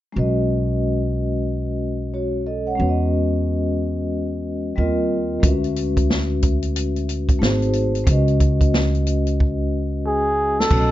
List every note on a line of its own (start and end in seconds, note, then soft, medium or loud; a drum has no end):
0.12 2.76 B1 medium
0.12 2.74 G#3 medium
0.12 2.75 C#4 soft
0.12 2.10 F#4 medium
0.17 2.11 B4 medium
0.17 2.11 D#5 medium
2.14 2.46 F#4 soft
2.14 2.45 C#5 medium
2.46 2.67 A4 soft
2.46 2.66 D#5 medium
2.67 2.81 C#5 soft
2.67 2.99 F#5 medium
2.75 4.71 G#3 medium
2.75 4.72 C#4 medium
2.75 4.73 F#4 medium
2.79 4.73 E2 medium
2.79 4.74 B4 medium
2.79 2.89 C#5 medium
2.89 4.78 D#5 medium
4.76 5.40 D#2 medium
4.76 5.43 G3 medium
4.76 5.43 C4 medium
4.76 5.43 F4 medium
4.76 5.44 A#4 medium
4.76 5.44 D#5 medium
5.40 7.37 D2 medium
5.40 7.36 G#3 medium
5.40 7.37 C#4 medium
5.40 7.37 F#4 medium
5.40 kick loud
5.40 closed hi-hat medium
5.45 7.38 B4 medium
5.45 7.39 E5 medium
5.64 closed hi-hat soft
5.76 closed hi-hat medium
5.97 kick medium
5.97 closed hi-hat soft
6.10 snare medium
6.42 kick medium
6.42 closed hi-hat medium
6.62 closed hi-hat soft
6.76 closed hi-hat medium
6.96 closed hi-hat soft
7.09 closed hi-hat medium
7.29 kick medium
7.29 closed hi-hat soft
7.39 8.04 G#1 medium
7.39 8.06 A3 medium
7.39 8.07 D#4 medium
7.39 8.06 F#4 medium
7.39 8.08 G#4 medium
7.39 8.08 C5 medium
7.39 snare loud
7.62 closed hi-hat soft
7.73 closed hi-hat medium
7.95 closed hi-hat soft
8.04 10.67 C#2 medium
8.04 10.65 G#3 medium
8.04 10.66 C#4 medium
8.04 10.67 F#4 medium
8.04 kick loud
8.04 closed hi-hat medium
8.09 10.68 B4 medium
8.09 10.69 D#5 medium
8.28 closed hi-hat soft
8.40 kick medium
8.40 closed hi-hat medium
8.61 kick medium
8.61 closed hi-hat soft
8.74 snare medium
8.95 closed hi-hat soft
9.07 closed hi-hat medium
9.27 closed hi-hat soft
9.40 kick medium
10.06 10.61 G#4 medium
10.60 10.91 A4 medium
10.60 snare medium
10.70 10.91 B1 medium
10.70 10.91 A3 medium
10.70 10.91 C#4 medium
10.70 10.91 F#4 medium
10.70 10.91 B4 medium
10.70 10.80 C#5 medium
10.70 kick loud
10.70 crash medium
10.79 10.91 D#5 medium